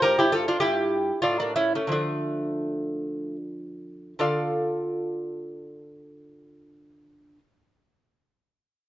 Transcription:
X:1
M:3/4
L:1/16
Q:1/4=76
K:Dm
V:1 name="Lute"
[GB] [EG] [FA] [DF] [EG]4 [DF] [B,D] [^CE] [A,C] | [A,D]8 z4 | [D,FAdf]12- | [D,FAdf]12 |]
V:2 name="Lute" clef=bass
G,,4 G,,4 A,,4 | [D,F,]12 | z12 | z12 |]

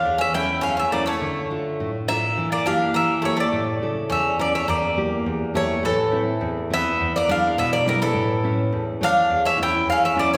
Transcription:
X:1
M:2/4
L:1/16
Q:1/4=104
K:Aphr
V:1 name="Bouzouki"
f e g2 f e d ^c- | ^c4- c z e2- | e d f2 e2 ^c d- | d4 e2 d e |
d6 ^c2 | A6 e2- | e d f2 e d B A- | A4- A z f2- |
f e g2 f e d ^c |]
V:2 name="Bouzouki"
D ^C E2 C C B, A,- | A,4- A, z B,2- | B, B, D2 B,2 A, A,- | A,4 ^C2 B, C |
B,6 A,2 | E,6 =B,2- | =B, _B, D2 =B, _B, G, E,- | E,4- E, z D2- |
D ^C E2 C C B, z |]
V:3 name="Nylon-string guitar"
[E,,E,A,^c]2 [A,^CE]2 E,,2 [A,CE]2 | D,2 [A,DF]2 A,,2 [A,DF]2 | E,2 [B,EG]2 E,2 [B,EG]2 | A,,2 [^C,EA]2 E,,2 [^CEA]2 |
E,,2 [B,EG]2 E,,2 [B,EG]2 | A,,2 [A,CE]2 E,,2 [A,CE]2 | E,,2 [^G,DE]2 =B,,2 [G,DE]2 | A,,2 [A,^CE]2 E,,2 [E,A,^c]2 |
E,,2 [A,^CE]2 E,,2 [A,CE]2 |]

